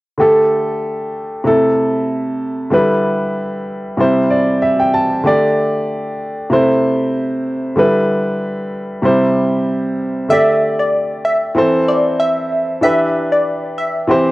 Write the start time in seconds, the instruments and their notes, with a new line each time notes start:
0.18 grand piano D3 A3 G4 A4
1.44 grand piano C3 A3 E4 A4
2.70 grand piano D3 G3 E4 B4
3.97 grand piano C3 G3 E4 C5
4.30 grand piano D5
4.62 grand piano E5
4.80 grand piano G5
4.94 grand piano A5
5.23 grand piano D3 A3 G4 D5
6.50 grand piano C3 A3 E4 C5
7.76 grand piano D3 G3 E4 B4
9.02 grand piano C3 G3 E4 C5
10.29 grand piano D3 A3 G4 D5, synth pluck E5
10.79 synth pluck D5
11.25 synth pluck E5
11.55 grand piano E3 C4 A4 C5
11.88 synth pluck D5
12.20 synth pluck E5
12.81 grand piano E3 D4 G4 B4, synth pluck E5
13.32 synth pluck D5
13.78 synth pluck E5
14.07 grand piano E3 C4 G4 C5